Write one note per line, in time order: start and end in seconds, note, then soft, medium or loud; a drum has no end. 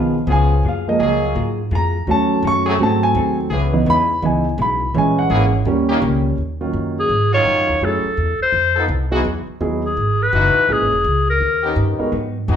0.00 0.26 B1 medium
0.00 0.16 C#3 soft
0.00 0.13 D#3 soft
0.00 0.13 F3 soft
0.00 0.14 B3 soft
0.00 0.16 B3 soft
0.00 0.17 F4 soft
0.00 0.17 G#4 medium
0.00 0.28 F5 medium
0.27 0.63 C#2 loud
0.27 0.52 C#3 medium
0.27 0.64 F3 medium
0.27 0.64 B3 medium
0.27 0.52 B3 medium
0.27 0.64 C#4 medium
0.27 0.53 F4 medium
0.27 0.64 G#4 loud
0.27 0.53 G#4 medium
0.32 0.64 G#5 medium
0.63 0.99 F#2 medium
0.63 0.88 F#3 soft
0.63 0.89 A#3 soft
0.63 0.89 F4 soft
0.63 0.89 G#4 medium
0.68 0.88 F5 medium
0.88 1.09 F3 soft
0.88 1.09 G#3 soft
0.88 1.09 A#3 medium
0.88 1.21 D#5 medium
0.99 1.35 C#2 medium
0.99 1.24 F#3 medium
0.99 1.54 F#3 loud
0.99 1.54 A#3 medium
0.99 1.24 A#3 medium
0.99 1.54 F4 medium
0.99 1.24 F4 medium
0.99 1.54 G#4 loud
0.99 1.25 G#4 medium
1.35 1.71 G#2 medium
1.35 1.60 F#3 medium
1.35 1.60 A#3 medium
1.35 1.60 F4 medium
1.35 1.61 G#4 medium
1.71 2.06 F2 medium
1.71 1.96 F#3 medium
1.71 1.96 A#3 medium
1.71 1.96 F4 medium
1.71 1.97 G#4 medium
1.75 2.07 A#5 medium
2.07 2.42 D#2 medium
2.07 2.31 D#3 soft
2.07 2.76 F#3 medium
2.07 2.76 A3 soft
2.07 2.32 C#4 soft
2.07 2.77 C#4 medium
2.07 2.32 F#4 medium
2.07 2.33 A4 medium
2.07 2.43 A5 medium
2.42 2.78 F#2 loud
2.42 2.68 D#3 medium
2.42 2.68 C#4 medium
2.42 2.68 F#4 medium
2.42 2.68 A4 medium
2.47 2.79 C#6 loud
2.66 2.76 F#3 loud
2.66 2.76 A3 loud
2.66 2.76 C4 medium
2.66 2.75 G#4 loud
2.78 3.14 G#2 medium
2.78 3.48 F#3 medium
2.78 3.04 G#3 medium
2.78 3.48 A3 soft
2.78 3.04 C4 soft
2.78 3.49 C4 medium
2.78 3.05 F#4 medium
2.78 3.05 A4 medium
2.83 3.03 A5 medium
3.03 3.36 G#5 medium
3.15 3.50 D#2 loud
3.15 3.40 G#3 medium
3.15 3.40 C4 medium
3.15 3.40 F#4 medium
3.15 3.40 A4 medium
3.50 3.86 C#2 medium
3.50 3.75 C#3 medium
3.50 4.05 E3 medium
3.50 3.75 G#3 medium
3.50 4.05 B3 medium
3.50 3.76 B3 medium
3.50 4.05 C#4 medium
3.50 3.76 E4 medium
3.50 4.05 G#4 loud
3.73 3.95 E3 medium
3.73 3.95 B3 soft
3.73 3.95 D#4 medium
3.86 4.22 E2 medium
3.86 4.11 C#3 medium
3.86 4.11 G#3 medium
3.86 4.11 B3 medium
3.86 4.12 E4 medium
3.86 4.22 B5 loud
4.22 4.57 C#2 medium
4.22 4.47 C#3 soft
4.22 4.43 E3 soft
4.22 4.47 G#3 medium
4.22 4.43 B3 soft
4.22 4.48 B3 medium
4.22 4.44 D#4 soft
4.22 4.48 E4 medium
4.22 4.58 G#5 medium
4.58 4.93 B1 loud
4.58 4.82 C#3 medium
4.58 4.83 G#3 medium
4.58 4.83 B3 medium
4.58 4.83 E4 medium
4.58 4.94 B5 medium
4.94 5.29 A#1 medium
4.94 5.18 A#2 soft
4.94 5.50 E3 medium
4.94 5.19 G#3 medium
4.94 5.51 G#3 soft
4.94 5.19 C#4 medium
4.94 5.51 C#4 medium
4.94 5.19 E4 medium
4.98 5.18 G#5 medium
5.19 5.51 F#5 medium
5.29 5.65 G#1 medium
5.29 5.54 A#2 medium
5.29 5.46 E3 medium
5.29 5.54 G#3 medium
5.29 5.46 A#3 medium
5.29 5.55 C#4 medium
5.29 5.46 C#4 medium
5.29 5.55 E4 medium
5.29 5.46 G#4 loud
5.65 6.01 D#2 medium
5.65 5.90 D#3 soft
5.65 6.35 G3 medium
5.65 5.90 A#3 medium
5.65 6.35 A#3 soft
5.65 5.91 C#4 medium
5.65 6.35 C#4 medium
5.65 5.91 G4 medium
5.89 5.98 D#3 loud
5.89 5.98 A#3 medium
5.89 5.98 C#4 medium
5.89 5.98 G4 loud
6.02 6.37 C#2 loud
6.02 6.26 D#3 medium
6.02 6.27 A#3 medium
6.02 6.27 C#4 medium
6.02 6.27 G4 medium
6.38 6.73 D#2 medium
6.61 7.07 D#3 medium
6.61 7.07 F#3 medium
6.61 7.07 A#3 medium
6.61 7.07 C#4 medium
6.61 7.08 F4 medium
6.73 7.09 F#2 medium
7.00 7.32 G#4 medium
7.09 7.44 G#2 medium
7.33 7.80 D#3 medium
7.33 7.80 F#3 medium
7.33 7.80 C#4 medium
7.33 7.79 F4 loud
7.33 7.86 C#5 loud
7.45 7.57 G2 medium
7.57 7.68 F#2 medium
7.69 7.80 D#2 medium
7.81 8.03 F#2 medium
7.81 8.02 F#3 medium
7.81 8.02 A3 medium
7.81 8.02 C#4 medium
7.81 8.03 E4 medium
7.81 8.03 G#4 medium
7.81 8.42 A4 medium
8.04 muted upright bass stroke soft
8.17 8.38 E2 medium
8.40 8.87 C5 loud
8.40 muted upright bass stroke soft
8.52 8.88 F2 medium
8.76 8.85 F3 medium
8.76 8.85 B3 medium
8.76 8.85 D#4 medium
8.76 8.85 A4 loud
8.88 9.24 C2 loud
9.11 9.21 E3 medium
9.11 9.24 F#3 medium
9.11 9.21 G#3 medium
9.11 9.24 B3 medium
9.11 9.21 D#4 medium
9.11 9.24 D#4 medium
9.11 9.24 E4 medium
9.11 9.21 F#4 loud
9.11 9.24 G#4 medium
9.24 9.46 E2 medium
9.47 muted upright bass stroke soft
9.61 9.96 D#2 medium
9.61 9.81 F#3 medium
9.61 9.81 B3 medium
9.61 9.81 D#4 medium
9.61 9.82 E4 medium
9.61 9.82 G#4 medium
9.86 10.24 G#4 medium
9.97 10.32 G#1 medium
10.22 10.74 B4 loud
10.33 10.54 F#1 loud
10.33 10.69 E3 medium
10.33 10.69 G#3 medium
10.33 10.69 D#4 medium
10.33 10.69 F#4 loud
10.55 muted upright bass stroke soft
10.68 10.80 A#1 medium
10.68 10.89 G#3 medium
10.68 10.89 A#3 soft
10.68 10.89 C#4 medium
10.68 10.89 E4 medium
10.68 10.89 G#4 medium
10.72 11.29 G#4 medium
10.80 10.92 G#1 medium
10.92 11.04 E1 medium
11.04 11.39 C#2 medium
11.30 11.75 A#4 medium
11.40 11.75 D#2 medium
11.63 12.10 D#3 loud
11.63 12.10 B3 medium
11.63 12.10 C#4 medium
11.63 12.10 G4 loud
11.76 11.97 G2 loud
11.99 12.11 G#3 medium
11.99 12.11 B3 medium
11.99 12.11 D#4 medium
11.99 12.11 F#4 medium
11.99 12.11 A#4 medium
11.99 muted upright bass stroke soft
12.12 12.36 G#2 medium
12.12 12.47 G#2 medium
12.12 12.36 F#3 medium
12.12 12.37 B3 medium
12.12 12.37 D#4 medium
12.48 12.56 F2 loud
12.48 12.56 G#2 medium
12.48 12.56 F#3 medium
12.48 12.56 B3 medium
12.48 12.56 D#4 medium
12.48 12.56 F#4 loud
12.48 12.56 G#4 loud